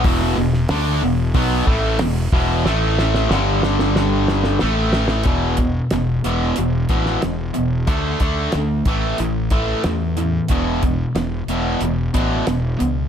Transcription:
<<
  \new Staff \with { instrumentName = "Distorted electric guitar" } { \clef bass \time 4/4 \key a \major \tempo 4 = 92 <e, b, e>8 <e, b,>8 <d a d'>8 <e, b,>8 <b, fis b>8 <a, e a>8 <e, b,>8 <e, b, e>8 | <a, e a>4 <g, d g>2 <a, e a>4 | <e, b, e>8 <e, b,>8 <e, b,>8 <e, b, e>8 <e, b,>8 <e, b, e>8 <e, b,>8 <e, b,>8 | <d a d'>8 <d a d'>8 <d a>8 <a, e a>8 <a, e>8 <a, e a>8 <a, e>8 <a, e>8 |
<e, b, e>8 <e, b,>8 <e, b,>8 <e, b, e>8 <e, b,>8 <e, b, e>8 <e, b,>8 <e, b,>8 | }
  \new Staff \with { instrumentName = "Fingered electric bass" } { \clef bass \time 4/4 \key a \major e,,8 e,,8 d,8 e,,8 b,,8 a,,8 e,,8 e,,8 | a,,4 g,,2 a,,4 | e,,4 e,,8 e,,8 e,,8 a,,8 e,,8 e,,8 | d,8 d,8 d,8 a,,8 a,,4 e,4 |
e,,4 e,,8 e,,8 e,,8 a,,8 e,,8 cis,8 | }
  \new DrumStaff \with { instrumentName = "Drums" } \drummode { \time 4/4 <hho bd>16 sn8 sn16 <hho sn>4 <hho bd>8 bd8 <hho sn>8 bd8 | sn8 sn16 sn16 sn8 sn16 sn16 sn8 sn16 sn16 sn8 sn16 sn16 | <hh bd>8 <hh bd>8 <hh sn>8 hh8 hh8 <hh bd>16 sn16 <hh sn>8 hh8 | <hh bd>8 <hh bd>8 <hh sn>8 <hh bd>8 hh8 <hh bd>8 <hh sn>8 hh8 |
<hh bd>8 <hh bd>8 <hh sn>8 hh8 hh8 <hh bd>8 <hh sn>8 hh8 | }
>>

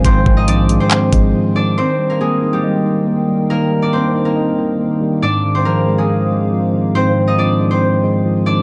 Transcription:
<<
  \new Staff \with { instrumentName = "Analog synth pad" } { \time 4/4 \key ees \major \tempo 4 = 139 << { <f'' aes''>1 | <ees' bes' g''>1~ | <ees' bes' g''>1 | <aes' c'' f''>1~ |
<aes' c'' f''>1 | } \\ { c''1 | ees1~ | ees1~ | ees1~ |
ees1 | } >> }
  \new Staff \with { instrumentName = "Harp" } { \time 4/4 \key ees \major <c' c''>8. <ees' ees''>16 <d' d''>8. <c' c''>4.~ <c' c''>16 <d' d''>8 | <c' c''>8. <bes bes'>16 <aes aes'>8. <g g'>2~ <g g'>16 | <bes bes'>8. <d' d''>16 <c' c''>8. <bes bes'>2~ <bes bes'>16 | <d' d''>8. <c' c''>16 <bes bes'>8. <aes aes'>2~ <aes aes'>16 |
<c' c''>8. <ees' ees''>16 <d' d''>8. <c' c''>4.~ <c' c''>16 <d' d''>8 | }
  \new Staff \with { instrumentName = "Tine electric piano" } { \clef bass \time 4/4 \key ees \major <aes, ees f aes c'>8 ees8 f8 aes8 c'8 aes8 f8 ees8 | ees8 g8 bes8 ees'8 ees''8 ees'8 bes8 g8 | ees8 g8 bes8 ees'8 ees''8 ees'8 bes8 g8 | aes,8 ees8 f8 aes8 c'8 aes8 f8 ees8 |
aes,8 ees8 f8 aes8 c'8 aes8 f8 ees8 | }
  \new Staff \with { instrumentName = "808-style bass" } { \clef bass \time 4/4 \key ees \major aes,,8 aes,,8 bes,,8. r8. aes,,8 r4 | r1 | r1 | r1 |
r1 | }
  \new DrumStaff \with { instrumentName = "Drums" } \drummode { \time 4/4 <hh bd>8 bd8 hh8 hh8 <hc hh>8 <hh bd>8 r4 | r4 r4 r4 r4 | r4 r4 r4 r4 | r4 r4 r4 r4 |
r4 r4 r4 r4 | }
>>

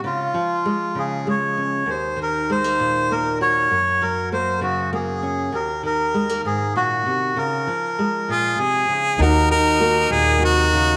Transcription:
<<
  \new Staff \with { instrumentName = "String section" } { \time 6/8 \key ees \dorian \tempo 4. = 66 r2. | r2. | r2. | r2. |
r2. | <bes' ges'' ees'''>2. | }
  \new Staff \with { instrumentName = "Melodica" } { \time 6/8 \key ees \dorian f'4. aes'8 des''4 | c''8 bes'8 c''4 bes'8 des''8~ | des''8 bes'8 c''8 ges'8 aes'4 | bes'8 bes'4 aes'8 ges'4 |
bes'4. aes'4 r8 | ees'2. | }
  \new Staff \with { instrumentName = "Harmonica" } { \time 6/8 \key ees \dorian r2. | r2. | r2. | r2. |
r4. f'8 aes'4 | bes'8 bes'4 aes'8 ges'4 | }
  \new Staff \with { instrumentName = "Clean electric guitar" } { \time 6/8 \key ees \dorian r2. | r2. | r2. | r2. |
r2. | ees'4 ges'4 ges'4 | }
  \new Staff \with { instrumentName = "Nylon-string guitar" } { \clef bass \time 6/8 \key ees \dorian << { aes4 aes4 aes8 des'8 | r4 aes16 bes8. bes8 ges'8 | r4 bes4 bes8 des'8 | r4 aes16 bes4.~ bes16 |
r4 aes2 | <ees bes ges'>4 bes2 | } \\ { des8 f4 des4. | ees,8 ees4 bes,4. | ges,8 ges4 des4. | ees,8 ees4 aes,8 bes,8 c8 |
des8 f4 bes,8 c8 des8 | ees,8 ees4 bes,8 c8 des8 | } >> }
  \new Staff \with { instrumentName = "Upright bass" } { \clef bass \time 6/8 \key ees \dorian r2. | r2. | r2. | r2. |
r2. | ees,4. ees,4. | }
>>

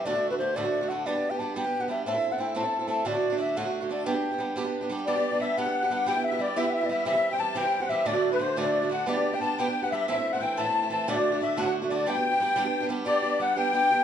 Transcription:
<<
  \new Staff \with { instrumentName = "Accordion" } { \time 6/8 \key g \major \tempo 4. = 120 r2. | r2. | r2. | r2. |
r2. | d''4 e''8 fis''4 fis''8 | g''8 e''8 d''8 e''8 e''8 e''8 | e''8. g''16 a''8 g''8. fis''16 e''8 |
d''8. b'16 c''8 d''4 fis''8 | d''8. g''16 a''8 g''8. fis''16 e''8 | e''8. fis''16 g''8 a''4 a''8 | d''4 e''8 fis''8 r8 d''8 |
g''2~ g''8 r8 | d''4 fis''8 g''4. | }
  \new Staff \with { instrumentName = "Flute" } { \time 6/8 \key g \major d''8. b'16 c''8 d''4 fis''8 | d''8. g''16 a''8 g''8. fis''16 e''8 | e''8. fis''16 g''8 a''4 a''8 | d''4 e''8 fis''8 r8 d''8 |
g''2~ g''8 r8 | d''4 e''8 fis''4. | g''8 e''8 d''8 e''16. fis''32 e''16. d''32 e''8 | e''8. g''16 a''8 g''8. fis''16 e''8 |
d''8. b'16 c''8 d''4 fis''8 | d''8. g''16 a''8 g''8. fis''16 e''8 | e''8. fis''16 g''8 a''4 a''8 | d''4 e''8 fis''8 r8 d''8 |
g''2~ g''8 r8 | d''4 fis''8 g''4. | }
  \new Staff \with { instrumentName = "Steel-string acoustic guitar" } { \time 6/8 \key g \major <d, a, d a d' fis'>16 <d a d' fis'>8 <d a d' fis'>16 <d a d' fis'>8 <d, a, d a d' fis'>16 <d a d' fis'>8 <d a d' fis'>16 <d a d' fis'>8 | <g b d' g'>16 <b d' g'>8 <b d' g'>16 <g b d' g'>8 <g b d' g'>16 <b d' g'>8 <b d' g'>16 <g b d' g'>8 | <a, a c' e' a'>16 <c' e' a'>8 <c' e' a'>16 <a c' e' a'>8 <a, a c' e' a'>16 <c' e' a'>8 <c' e' a'>16 <a c' e' a'>8 | <d, a, d a d' fis'>16 <d a d' fis'>8 <d a d' fis'>16 <d a d' fis'>8 <d, a, d a d' fis'>16 <d a d' fis'>8 <d a d' fis'>16 <d a d' fis'>8 |
<g b d' g'>16 <b d' g'>8 <b d' g'>16 <g b d' g'>8 <g b d' g'>16 <b d' g'>8 <b d' g'>16 <g b d' g'>8 | <g b d' g'>16 <b d' g'>8 <b d' g'>16 <g b d' g'>8 <g b d' g'>16 <b d' g'>8 <b d' g'>16 <g b d' g'>8 | <g b e' g'>16 <b e' g'>8 <b e' g'>16 <g b e' g'>8 <g b e' g'>16 <b e' g'>8 <b e' g'>16 <g b e' g'>8 | <c e g c' g'>16 <g c' g'>8 <g c' g'>16 <e g c' g'>8 <c e g c' g'>16 <g c' g'>8 <g c' g'>16 <e g c' g'>8 |
<d, a, d a d' fis'>16 <d a d' fis'>8 <d a d' fis'>16 <d a d' fis'>8 <d, a, d a d' fis'>16 <d a d' fis'>8 <d a d' fis'>16 <d a d' fis'>8 | <g b d' g'>16 <b d' g'>8 <b d' g'>16 <g b d' g'>8 <g b d' g'>16 <b d' g'>8 <b d' g'>16 <g b d' g'>8 | <a, e a c' e'>16 <a c' e'>8 <a c' e'>16 <e a c' e'>8 <a, e a c' e'>16 <c' e'>8 <a c' e'>16 <e a c' e'>8 | <d, a, d a d' fis'>16 <d a d' fis'>8 <d a d' fis'>16 <d a d' fis'>8 <d, a, d a d' fis'>16 <d a d' fis'>8 <d a d' fis'>16 <d a d' fis'>8 |
<g b d' g'>16 <b d' g'>8 <b d' g'>16 <g b d' g'>8 <g b d' g'>16 <b d' g'>8 <b d' g'>16 <g b d' g'>8 | <g b d' g'>8 <b d' g'>8 <g b d' g'>8 <g b d' g'>8 <g b d' g'>8 <b d' g'>8 | }
>>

